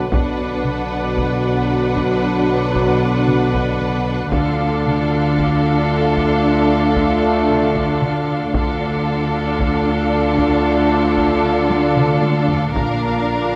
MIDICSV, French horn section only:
0, 0, Header, 1, 2, 480
1, 0, Start_track
1, 0, Tempo, 1052632
1, 53, Time_signature, 4, 2, 24, 8
1, 6181, End_track
2, 0, Start_track
2, 0, Title_t, "French horn section"
2, 0, Program_c, 0, 60
2, 46, Note_on_c, 0, 66, 64
2, 48, Note_on_c, 0, 59, 62
2, 1901, Note_off_c, 0, 59, 0
2, 1901, Note_off_c, 0, 66, 0
2, 1979, Note_on_c, 0, 62, 60
2, 1980, Note_on_c, 0, 65, 59
2, 3878, Note_off_c, 0, 62, 0
2, 3879, Note_off_c, 0, 65, 0
2, 3894, Note_on_c, 0, 65, 65
2, 3898, Note_on_c, 0, 62, 66
2, 5729, Note_off_c, 0, 62, 0
2, 5729, Note_off_c, 0, 65, 0
2, 5806, Note_on_c, 0, 65, 72
2, 5811, Note_on_c, 0, 62, 66
2, 6181, Note_off_c, 0, 62, 0
2, 6181, Note_off_c, 0, 65, 0
2, 6181, End_track
0, 0, End_of_file